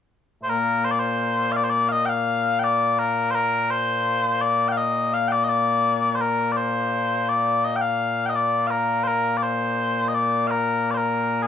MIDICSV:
0, 0, Header, 1, 2, 480
1, 0, Start_track
1, 0, Key_signature, -2, "major"
1, 0, Tempo, 714286
1, 336, Time_signature, 2, 2, 24, 8
1, 7711, End_track
2, 0, Start_track
2, 0, Title_t, "Bagpipes"
2, 0, Program_c, 0, 109
2, 291, Note_on_c, 0, 46, 89
2, 291, Note_on_c, 0, 58, 89
2, 291, Note_on_c, 0, 72, 72
2, 333, Note_off_c, 0, 72, 0
2, 333, Note_on_c, 0, 70, 95
2, 569, Note_off_c, 0, 70, 0
2, 569, Note_on_c, 0, 72, 96
2, 614, Note_off_c, 0, 72, 0
2, 614, Note_on_c, 0, 74, 83
2, 668, Note_off_c, 0, 74, 0
2, 668, Note_on_c, 0, 72, 89
2, 1021, Note_off_c, 0, 72, 0
2, 1021, Note_on_c, 0, 77, 90
2, 1049, Note_off_c, 0, 77, 0
2, 1049, Note_on_c, 0, 74, 90
2, 1102, Note_off_c, 0, 74, 0
2, 1102, Note_on_c, 0, 72, 77
2, 1142, Note_off_c, 0, 72, 0
2, 1142, Note_on_c, 0, 74, 95
2, 1267, Note_off_c, 0, 74, 0
2, 1267, Note_on_c, 0, 77, 81
2, 1289, Note_off_c, 0, 77, 0
2, 1289, Note_on_c, 0, 75, 121
2, 1381, Note_off_c, 0, 75, 0
2, 1381, Note_on_c, 0, 79, 93
2, 1406, Note_off_c, 0, 79, 0
2, 1406, Note_on_c, 0, 77, 93
2, 1742, Note_off_c, 0, 77, 0
2, 1742, Note_on_c, 0, 79, 97
2, 1771, Note_off_c, 0, 79, 0
2, 1771, Note_on_c, 0, 74, 97
2, 2010, Note_off_c, 0, 74, 0
2, 2010, Note_on_c, 0, 70, 83
2, 2223, Note_off_c, 0, 70, 0
2, 2223, Note_on_c, 0, 72, 110
2, 2251, Note_off_c, 0, 72, 0
2, 2251, Note_on_c, 0, 70, 110
2, 2490, Note_off_c, 0, 70, 0
2, 2490, Note_on_c, 0, 72, 97
2, 2967, Note_off_c, 0, 72, 0
2, 2967, Note_on_c, 0, 74, 88
2, 3147, Note_off_c, 0, 74, 0
2, 3147, Note_on_c, 0, 79, 85
2, 3174, Note_off_c, 0, 79, 0
2, 3174, Note_on_c, 0, 77, 85
2, 3205, Note_off_c, 0, 77, 0
2, 3205, Note_on_c, 0, 75, 109
2, 3451, Note_off_c, 0, 75, 0
2, 3451, Note_on_c, 0, 77, 95
2, 3549, Note_off_c, 0, 77, 0
2, 3549, Note_on_c, 0, 79, 93
2, 3573, Note_off_c, 0, 79, 0
2, 3573, Note_on_c, 0, 74, 93
2, 3654, Note_off_c, 0, 74, 0
2, 3654, Note_on_c, 0, 75, 78
2, 3689, Note_off_c, 0, 75, 0
2, 3689, Note_on_c, 0, 74, 89
2, 4134, Note_off_c, 0, 74, 0
2, 4134, Note_on_c, 0, 72, 70
2, 4173, Note_off_c, 0, 72, 0
2, 4173, Note_on_c, 0, 70, 92
2, 4383, Note_off_c, 0, 70, 0
2, 4383, Note_on_c, 0, 74, 67
2, 4415, Note_off_c, 0, 74, 0
2, 4415, Note_on_c, 0, 72, 85
2, 4900, Note_off_c, 0, 72, 0
2, 4900, Note_on_c, 0, 74, 76
2, 5137, Note_off_c, 0, 74, 0
2, 5137, Note_on_c, 0, 75, 103
2, 5214, Note_off_c, 0, 75, 0
2, 5214, Note_on_c, 0, 79, 77
2, 5251, Note_off_c, 0, 79, 0
2, 5251, Note_on_c, 0, 77, 96
2, 5550, Note_off_c, 0, 77, 0
2, 5550, Note_on_c, 0, 79, 69
2, 5572, Note_off_c, 0, 79, 0
2, 5572, Note_on_c, 0, 75, 69
2, 5613, Note_off_c, 0, 75, 0
2, 5613, Note_on_c, 0, 74, 85
2, 5825, Note_off_c, 0, 74, 0
2, 5825, Note_on_c, 0, 77, 77
2, 5849, Note_off_c, 0, 77, 0
2, 5849, Note_on_c, 0, 70, 77
2, 6073, Note_off_c, 0, 70, 0
2, 6073, Note_on_c, 0, 72, 100
2, 6099, Note_off_c, 0, 72, 0
2, 6099, Note_on_c, 0, 70, 100
2, 6299, Note_off_c, 0, 70, 0
2, 6299, Note_on_c, 0, 74, 65
2, 6337, Note_off_c, 0, 74, 0
2, 6337, Note_on_c, 0, 72, 85
2, 6777, Note_off_c, 0, 72, 0
2, 6777, Note_on_c, 0, 75, 66
2, 6817, Note_off_c, 0, 75, 0
2, 6817, Note_on_c, 0, 74, 80
2, 7036, Note_off_c, 0, 74, 0
2, 7036, Note_on_c, 0, 77, 85
2, 7060, Note_off_c, 0, 77, 0
2, 7060, Note_on_c, 0, 70, 85
2, 7332, Note_off_c, 0, 70, 0
2, 7332, Note_on_c, 0, 74, 57
2, 7355, Note_off_c, 0, 74, 0
2, 7355, Note_on_c, 0, 72, 57
2, 7374, Note_off_c, 0, 72, 0
2, 7374, Note_on_c, 0, 70, 77
2, 7674, Note_off_c, 0, 70, 0
2, 7674, Note_on_c, 0, 68, 60
2, 7701, Note_off_c, 0, 68, 0
2, 7711, Note_off_c, 0, 46, 0
2, 7711, Note_off_c, 0, 58, 0
2, 7711, End_track
0, 0, End_of_file